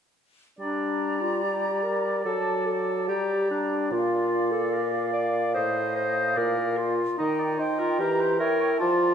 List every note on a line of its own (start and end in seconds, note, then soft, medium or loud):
0.59 2.21 G3 soft
0.59 1.22 D4 soft
0.59 3.87 D5 soft
0.59 2.21 A#5 soft
1.21 1.44 F4 soft
1.43 1.85 G4 soft
1.83 2.24 A#4 soft
2.25 3.10 F#3 soft
2.25 2.66 A4 soft
2.25 3.06 A5 soft
2.66 3.07 A4 soft
3.08 3.94 G3 soft
3.08 3.49 G4 soft
3.08 3.92 A#5 soft
3.51 3.93 D4 soft
3.91 5.55 A#2 soft
3.91 4.53 F4 soft
3.91 5.52 D5 soft
3.91 6.93 F5 soft
4.51 4.74 A4 soft
4.72 5.12 A#4 soft
5.13 5.54 D5 medium
5.54 6.36 A2 soft
5.54 5.95 C5 medium
5.54 6.38 D#5 soft
5.95 6.38 C5 medium
6.36 7.03 A#2 soft
6.36 6.79 A#4 medium
6.36 7.01 D5 soft
6.77 7.17 F4 soft
7.18 7.57 D#3 soft
7.18 7.61 D#4 medium
7.18 7.41 D#5 soft
7.18 7.56 G5 soft
7.39 7.60 D5 soft
7.58 8.02 D#4 soft
7.58 7.80 C5 soft
7.58 7.98 G5 soft
7.78 8.01 F4 medium
7.78 7.99 A#4 soft
7.99 8.40 E3 soft
7.99 8.38 G4 medium
7.99 8.22 A#4 soft
7.99 8.39 A#5 soft
8.20 8.41 C5 soft
8.39 8.80 E4 soft
8.39 8.79 A#4 medium
8.39 8.60 C#5 soft
8.39 8.79 G5 soft
8.61 8.70 C#5 soft
8.79 9.14 F3 soft
8.79 9.14 F4 medium
8.79 9.14 D5 soft
8.79 8.99 A5 soft
9.00 9.14 A5 soft